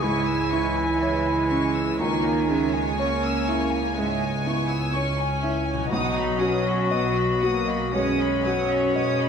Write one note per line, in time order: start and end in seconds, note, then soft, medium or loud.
0.00 1.97 C#2 medium
0.00 2.01 C#2 medium
0.00 0.82 G#2 medium
0.00 1.74 C#3 medium
0.00 2.00 E3 medium
0.00 1.01 G#3 medium
0.00 0.52 E4 medium
0.00 1.99 E4 medium
0.00 1.02 C#5 medium
0.00 1.97 C#5 medium
0.00 1.99 G#5 medium
0.00 0.25 C#6 medium
0.27 0.52 E6 medium
0.51 1.31 E4 medium
0.51 0.76 C#6 medium
0.76 1.01 G#5 medium
1.01 1.99 G#3 medium
1.01 1.81 C#5 medium
1.01 1.26 E5 medium
1.27 1.51 G#5 medium
1.51 2.30 C#4 soft
1.51 1.75 C#6 medium
1.75 2.00 E6 medium
1.99 3.92 C#2 medium
1.99 5.88 C#2 medium
1.99 2.99 D#3 medium
1.99 2.50 A#3 medium
1.99 2.70 D#4 medium
1.99 5.87 C#5 medium
1.99 5.87 G#5 medium
1.99 2.23 C#6 medium
2.25 2.50 G#5 medium
2.50 2.98 G#3 medium
2.50 3.28 C#4 medium
2.50 2.75 E5 medium
2.73 2.98 G#5 medium
2.96 3.94 C#3 medium
2.96 3.96 A#3 medium
2.96 3.91 C#4 medium
2.96 3.77 C#5 medium
2.96 3.24 C#6 medium
3.24 3.48 E6 medium
3.48 4.26 E4 medium
3.48 3.72 C#6 medium
3.71 3.96 G#5 medium
3.96 4.76 G#2 medium
3.96 4.45 G#3 medium
3.96 4.19 E5 medium
4.22 4.46 G#5 medium
4.46 4.94 B3 medium
4.46 5.24 E4 medium
4.46 4.71 C#6 medium
4.70 4.94 E6 medium
4.94 5.91 C#4 medium
4.94 5.73 C#5 medium
4.94 5.18 C#6 medium
5.19 5.43 G#5 medium
5.42 5.92 E4 medium
5.42 5.67 E5 medium
5.66 5.90 G#5 medium
5.73 9.29 B2 medium
5.78 9.29 F#3 soft
5.82 9.29 F#4 soft
5.87 7.91 F#3 medium
5.87 7.96 F#4 loud
5.87 6.13 B4 medium
5.87 9.29 D#5 medium
5.87 6.13 F#5 medium
5.91 6.78 B1 medium
5.91 7.92 B1 medium
5.91 6.39 D#4 medium
5.91 6.15 D#6 medium
6.15 6.40 D#5 medium
6.15 6.41 B5 medium
6.38 6.90 C#4 medium
6.38 7.21 F#4 medium
6.38 6.64 B4 medium
6.38 6.64 F#5 medium
6.38 6.65 D#6 medium
6.63 6.89 D#5 medium
6.63 6.90 B5 medium
6.87 7.12 B4 medium
6.87 7.12 F#5 medium
6.87 7.14 D#6 medium
6.91 7.83 B1 medium
6.91 7.43 B3 medium
6.91 7.75 D#5 medium
7.13 7.41 D#5 medium
7.13 7.42 B5 medium
7.39 7.94 A#3 medium
7.39 8.26 F#4 medium
7.39 7.68 B4 medium
7.39 7.67 F#5 medium
7.39 7.69 D#6 medium
7.66 7.93 D#5 medium
7.66 7.95 B5 medium
7.92 8.83 B1 medium
7.92 8.75 F#2 medium
7.92 8.45 G#3 medium
7.92 9.29 C#4 medium
7.92 8.17 B4 medium
7.92 9.29 C#5 loud
7.92 8.18 F#5 medium
7.92 8.18 D#6 medium
8.18 8.45 D#5 medium
8.18 8.45 B5 medium
8.43 8.94 F#3 medium
8.43 9.24 F#4 medium
8.43 8.69 B4 medium
8.43 8.69 F#5 medium
8.43 8.70 D#6 medium
8.68 8.93 D#5 soft
8.68 8.95 B5 medium
8.92 9.29 B1 medium
8.92 9.29 G#3 medium
8.92 9.16 B4 medium
8.92 9.29 D#5 medium
8.92 9.16 F#5 medium
8.97 9.18 D#6 medium
9.18 9.29 D#5 soft
9.18 9.29 B5 medium